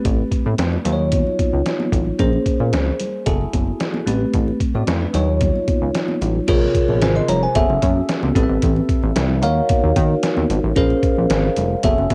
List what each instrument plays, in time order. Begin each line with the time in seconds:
Already playing: tine electric piano A3 C4 G4 B4
0.05 analog synth bass A1, kick, closed hi-hat, muted conga
0.32 kick, closed hi-hat
0.46 analog synth bass A2, high conga
0.58 analog synth bass F2, snare, closed hi-hat, muted conga
0.73 muted conga
0.85 analog synth bass D#2, tine electric piano F#3 D#4 F4 C5, closed hi-hat, low conga
0.93 tine electric piano C#5
1.12 kick, closed hi-hat, muted conga, high conga, low conga
1.27 muted conga
1.39 kick, closed hi-hat, high conga
1.53 analog synth bass C#2
1.66 snare, closed hi-hat, muted conga
1.80 muted conga, high conga
1.92 analog synth bass A1, kick, closed hi-hat, low conga
2.19 analog synth bass A#1, tine electric piano A#3 C#4 G#4 C5, kick, closed hi-hat
2.33 muted conga
2.46 kick, closed hi-hat
2.59 analog synth bass A#2, high conga
2.73 analog synth bass C#2, snare, closed hi-hat
3.00 closed hi-hat, low conga
3.26 analog synth bass F#1, tine electric piano E4 F#4 G#4 A4, kick, closed hi-hat, high conga, low conga
3.41 muted conga
3.53 analog synth bass F#1, kick, closed hi-hat, high conga
3.80 snare, closed hi-hat, muted conga
3.94 muted conga, high conga
4.06 analog synth bass A1, tine electric piano A3 C4 G4 B4, closed hi-hat, low conga
4.34 analog synth bass A1, kick, closed hi-hat, muted conga
4.48 muted conga
4.60 kick, closed hi-hat
4.74 analog synth bass A2, tine electric piano F#4 D5, high conga
4.87 analog synth bass F2, tine electric piano E4 C5, snare, closed hi-hat
5.02 tine electric piano D4 B4
5.13 analog synth bass D#2, tine electric piano F#3 D#4 F4 C#5, closed hi-hat, low conga
5.41 kick, closed hi-hat, muted conga, high conga, low conga
5.55 muted conga
5.68 kick, closed hi-hat, high conga
5.82 analog synth bass C#2
5.95 snare, closed hi-hat
6.08 muted conga, high conga
6.21 analog synth bass A1, closed hi-hat, low conga
6.47 analog synth bass A#1, tine electric piano C3 F4 G#4 A#4 C#5, kick, closed hi-hat, crash, muted conga
6.62 muted conga
6.75 kick, closed hi-hat
6.88 analog synth bass A#1, high conga
7.02 analog synth bass G#1, tine electric piano C5 G#5, snare, closed hi-hat
7.16 tine electric piano D#5 C6
7.28 analog synth bass F1, tine electric piano C#5 A#5, closed hi-hat, low conga
7.43 tine electric piano C5 G#5
7.55 analog synth bass F#1, tine electric piano C#4 F#4 G#4 A4 E5, kick, closed hi-hat, high conga
7.70 analog synth bass F#1, muted conga
7.82 analog synth bass F#2, kick, closed hi-hat, high conga
8.09 snare, closed hi-hat, muted conga
8.23 analog synth bass C#2, muted conga, high conga
8.35 analog synth bass A1, tine electric piano C4 G4 A4 B4 D#5, kick, closed hi-hat, low conga
8.43 tine electric piano E5
8.49 analog synth bass G#1
8.62 analog synth bass A1, kick, closed hi-hat, muted conga
8.76 muted conga
8.89 kick, closed hi-hat
9.03 analog synth bass A1, high conga
9.16 analog synth bass C2, snare, closed hi-hat, muted conga
9.42 analog synth bass D#2, tine electric piano D#4 F#4 A#4 C#5 F5, closed hi-hat, low conga
9.69 kick, closed hi-hat, high conga
9.84 analog synth bass D#2
9.96 analog synth bass D#3, kick, closed hi-hat, high conga
10.23 snare, closed hi-hat, muted conga
10.37 analog synth bass D#2, high conga
10.50 analog synth bass G#1, closed hi-hat, low conga
10.64 analog synth bass A1
10.76 analog synth bass A#1, tine electric piano C#4 G#4 A#4 C5 F5, kick, closed hi-hat, muted conga
10.90 muted conga
11.03 kick, closed hi-hat
11.17 analog synth bass A#1, high conga
11.30 analog synth bass G#1, snare, closed hi-hat, muted conga
11.57 analog synth bass F1, closed hi-hat, low conga
11.83 analog synth bass F#1, tine electric piano C#4 F#4 G#4 A4 E5, kick, closed hi-hat, muted conga, high conga
11.98 analog synth bass F#1, muted conga
12.10 analog synth bass F#2, kick, closed hi-hat, high conga